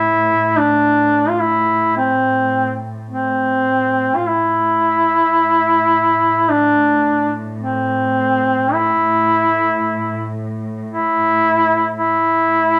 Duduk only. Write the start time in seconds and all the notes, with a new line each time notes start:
Already playing: E4
0.57 D4
1.29 F4
1.39 E4
1.97 C4
3.09 C4
4.16 F4
4.27 E4
6.49 D4
7.60 C4
8.73 E4
10.89 E4
11.97 E4